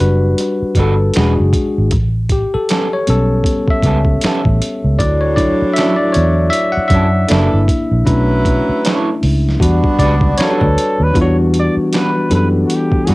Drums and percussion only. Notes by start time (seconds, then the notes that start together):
0.38 closed hi-hat
0.75 kick, closed hi-hat
1.14 finger snap, snare, closed hi-hat
1.53 kick, closed hi-hat
1.91 kick, closed hi-hat
2.29 kick, closed hi-hat
2.69 finger snap, snare, closed hi-hat
3.07 closed hi-hat
3.44 kick, closed hi-hat
3.68 kick
3.83 kick, closed hi-hat
4.05 kick
4.21 finger snap, snare, closed hi-hat
4.45 kick
4.62 closed hi-hat
4.99 kick, closed hi-hat
5.37 kick, closed hi-hat
5.76 finger snap, snare, closed hi-hat
6.14 closed hi-hat
6.53 closed hi-hat
6.90 kick, closed hi-hat
7.29 finger snap, snare, closed hi-hat
7.68 kick, closed hi-hat
8.07 kick, closed hi-hat
8.45 kick, closed hi-hat
8.85 finger snap, snare, closed hi-hat
9.23 open hi-hat
9.49 snare
9.60 kick, closed hi-hat
9.84 kick
9.99 kick, closed hi-hat
10.03 snare
10.21 kick
10.38 finger snap, snare, closed hi-hat
10.61 kick
10.78 closed hi-hat
11.15 kick, closed hi-hat
11.54 closed hi-hat
11.93 finger snap, snare, closed hi-hat
12.31 closed hi-hat
12.70 closed hi-hat
12.92 kick
13.07 snare, closed hi-hat